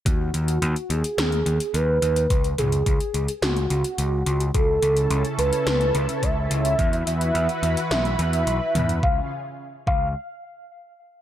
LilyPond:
<<
  \new Staff \with { instrumentName = "Soft synth lead" } { \time 4/4 \key cis \minor \tempo 4 = 107 fis'4. gis'4. b'4~ | b'8 gis'4. fis'2 | a'4. b'4. e''4~ | e''8 e''4. e''2 |
eis''8 r4 eis''8 r2 | }
  \new Staff \with { instrumentName = "Analog synth pad" } { \time 4/4 \key cis \minor r1 | r1 | <cis cis' e' a'>1 | <e fis' b'>1 |
<cis cis' eis' gis'>8 r2. r8 | }
  \new Staff \with { instrumentName = "Picked electric bass" } { \clef bass \time 4/4 \key cis \minor dis,8 dis,8 dis,8 dis,8 dis,8 dis,8 dis,8 dis,8 | cis,8 cis,8 cis,8 cis,8 cis,8 cis,8 cis,8 cis,8 | cis,8 cis,8 cis,8 cis,8 cis,8 cis,8 cis,8 cis,8 | e,8 e,8 e,8 e,8 b,,8 e,8 b,,8 e,8 |
cis,8 r4 cis,8 r2 | }
  \new DrumStaff \with { instrumentName = "Drums" } \drummode { \time 4/4 <hh bd>8 hh16 hh16 hh16 hh16 hh16 hh16 <hh sn>16 hh16 hh16 hh16 hh8 hh16 hh16 | <hh bd>16 hh16 <hh toml>16 hh16 <hh bd>16 hh16 hh16 hh16 <hh sn>16 hh16 hh16 hh16 hh8 hh16 hh16 | <hh bd>8 hh16 hh16 hh16 hh16 hh16 hh16 <hh sn>16 hh16 hh16 hh16 <hh bd>8 hh16 hh16 | <hh bd>16 hh16 hh16 hh16 hh16 hh16 hh16 hh16 <hh sn>16 hh16 hh16 hh16 hh8 <hh toml>16 hh16 |
bd4 r8 bd8 r4 r4 | }
>>